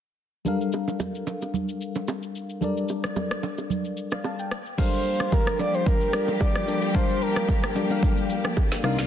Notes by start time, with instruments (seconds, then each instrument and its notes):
0.45 fm electric piano G3 D4 A4 A#4 F5, low conga, shaker
0.61 shaker
0.72 high bongo, shaker
0.88 low bongo, shaker
1.00 high bongo, low conga, shaker
1.15 shaker
1.27 low bongo, shaker
1.42 high bongo, shaker
1.54 low conga, shaker
1.69 shaker
1.81 shaker
1.95 low bongo, shaker
2.08 high bongo, shaker
2.23 shaker
2.35 shaker
2.50 shaker
2.61 fm electric piano G3 D4 A4 A#4 D5, low conga, shaker
2.77 shaker
2.89 high bongo, shaker
3.04 cross-stick, low bongo, shaker
3.16 high bongo, low conga, shaker
3.31 cross-stick, shaker
3.43 low bongo, shaker
3.58 high bongo, shaker
3.70 low conga, shaker
3.85 shaker
3.97 shaker
4.11 fm electric piano D5 F5, cross-stick, low bongo, shaker
4.24 fm electric piano F5 A5, high bongo, shaker
4.39 fm electric piano G5, shaker
4.51 cross-stick, shaker
4.66 shaker
4.78 string section F3 G3 A#3 G4, fm electric piano G3 D4 A4 A#4 F5, soft synth lead C5, kick, crash, low conga, shaker
4.93 shaker
5.05 shaker
5.20 cross-stick, low bongo, shaker
5.32 soft synth lead A#4, kick, high bongo, low conga, shaker
5.47 cross-stick, shaker
5.59 soft synth lead D5, low bongo, shaker
5.74 soft synth lead C5, shaker
5.86 soft synth lead A#4, kick, low conga, shaker
6.01 shaker
6.13 fm electric piano G3 D4 A4 A#4 D5, cross-stick, shaker
6.28 low bongo, shaker
6.40 soft synth lead D5, kick, high bongo, shaker
6.55 cross-stick, shaker
6.67 fm electric piano G3 D4 A4 A#4 D5, shaker
6.82 shaker
6.94 fm electric piano G3 D4 A#4 F5 A5, soft synth lead C5, kick, low conga, shaker
7.10 shaker
7.21 soft synth lead A#4, shaker
7.36 cross-stick, low bongo, shaker
7.48 kick, high bongo, low conga, shaker
7.64 cross-stick, shaker
7.75 fm electric piano G3 D4 A4 A#4 D5, low bongo, shaker
7.90 fm electric piano G3 D4 A4 A#4 F5, shaker
8.02 kick, low conga, shaker
8.17 shaker
8.30 shaker
8.44 cross-stick, low bongo, shaker
8.57 kick, high bongo, shaker
8.72 snare, shaker
8.83 string section C2 D#3 F4 D5, fm electric piano C3 G3 D4 D#4 A#4 F5, cross-stick, shaker
8.98 snare, shaker